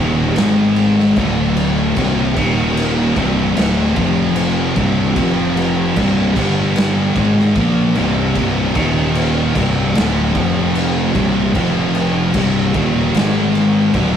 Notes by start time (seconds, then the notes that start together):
Already playing: D#1 D#2
0.00 A#2 D#3
0.35 G#1 G#2 D#3 G#3, snare, crash
0.76 crash
0.99 snare
1.16 D1 D2 A2 D3, kick, crash
1.57 crash
1.97 C1 C2 G2 C3, kick, crash
2.36 D#1 D#2 A#2 D#3, kick, crash
2.77 crash
3.15 C1 C2 G2 C3, kick, crash
3.56 D1 D2 A2 D3, snare, crash
3.95 F1 F2 C3 F3, kick, crash
4.36 crash
4.76 C1 C2 G2 C3, kick, crash
5.16 F1 F2 C3 F3, kick, crash
5.57 crash
5.96 C1 C2 G2 C3, kick, crash
6.36 G1 G2 D3 G3, kick, crash
6.76 snare, crash
7.15 G#1 G#2 D#3 G#3, kick, crash
7.39 snare
7.56 A#1 A#2 F3 A#3, kick, crash
7.95 C1 C2 G2 C3, crash
8.35 C1 C2 G2 C3, kick, crash
8.75 D#1 D#2 A#2 D#3, kick, crash
9.15 crash
9.55 C1 C2 G2 C3, kick, crash
9.95 D1 D2 A2 D3, snare, crash
10.35 F1 F2 C3 F3, kick, crash
10.75 crash
11.14 C1 C2 G2 C3, kick, crash
11.54 F1 F2 C3 F3, kick, crash
11.95 crash
12.34 C1 C2 G2 C3, kick, crash
12.74 D#1 D#2 A#2 D#3, kick, crash
13.14 G#1 G#2 D#3 G#3, snare, crash
13.55 crash
13.93 D1 D2 A2 D3, kick, crash